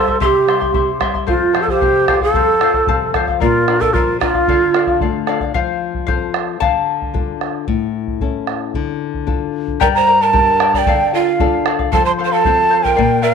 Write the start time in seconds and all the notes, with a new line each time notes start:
Already playing: G3 A4 C5
0.07 E4 E5 C6, bombo low
0.20 C3 E4 G4 A4 C5 E5 C6, bombo low
0.26 G4
0.47 G3 E4 C5 E5 C6, bombo rim
0.60 E4 E5 C6, bombo low
0.74 C3 E4 C5 E5 C6, bombo low
1.00 G3 E4 C5 E5 C6, bombo rim, bombo low
1.14 E4 E5 C6, bombo low
1.27 F2 F4 A4 C5 F5, bombo low
1.53 F3 A4 C5 F5, bombo rim
1.62 A4
1.67 G4 C5 F5, bombo low
1.80 C3 A4 C5 F5, bombo low
2.08 F3 A4 C5 F5, bombo rim, bombo low
2.21 A4 C5 F5, bombo low
2.34 F2 A4 C5 F5, bombo low
2.61 F3 A4 C5 F5, bombo rim
2.74 C5 F5, bombo low
2.87 C3 A4 C5 F5 A5, bombo low
3.14 F3 A4 C5 F5, bombo rim, bombo low
3.28 C5 F5, bombo low
3.40 A#2 F4 A#4 D5 F5, bombo low
3.67 D4 A#4 D5 F5, bombo rim
3.80 A4 A#4 D5 F5, bombo low
3.93 F3 F4 A#4 D5 F5, bombo low
4.20 D4 F4 G4 A#4 D5 F5, bombo rim, bombo low
4.34 D5 F5, bombo low
4.48 D3 A4 D5 F5, bombo low
4.74 D4 A4 D5 F5, bombo rim
4.87 D5 F5, bombo low
5.00 A3 A4 D5 F5, bombo low
5.27 D4 A4 D5 F5, bombo rim
5.40 D5 F5, bombo low
5.54 F3 C5 F5, bombo low
5.94 bombo low
6.07 C4 F4 A4 C5 F5, bombo low
6.34 bombo rim
6.60 D3 F5 A5, bombo low
7.02 bombo low
7.14 D4 F4 A4, bombo low
7.41 bombo rim
7.68 A2, bombo low
8.07 bombo low
8.20 C#4 E4 A4, bombo low
8.47 bombo rim
8.74 D3, bombo low
9.14 bombo low
9.27 D4 F4 A4, bombo low
9.68 bombo low
9.80 G2 G4 A#4 D5 G5 A#5, bombo low
9.94 C5 A#5
10.07 A#4 D5 G5 A#5
10.20 A#4 D5 A5 A#5
10.33 D4 G4 A#4 D5 G5 A#5, bombo low
10.60 A#4 D5 G5 A#5, bombo rim
10.74 A#4 D5 A5 A#5, bombo low
10.78 G5
10.86 D3 A4 D5 F5, bombo low
11.14 F4 A4 D5 F5
11.27 D5 F5
11.40 D4 F4 A4 D5 F5, bombo low
11.66 A4 D5 F5, bombo rim
11.79 D5 F5, bombo low
11.92 F3 A4 C5 F5 A5, bombo low
12.05 C5 C6
12.19 A4 C5 F5
12.25 C5 C6
12.31 A4 C5 F5 A5
12.44 C4 F4 A4 C5 F5, bombo low
12.70 A4 C5 F5
12.82 A#4 C5 F5 G5, bombo low
12.95 A#2 A#4 D5 F5, bombo low
13.22 A#4 D5 F5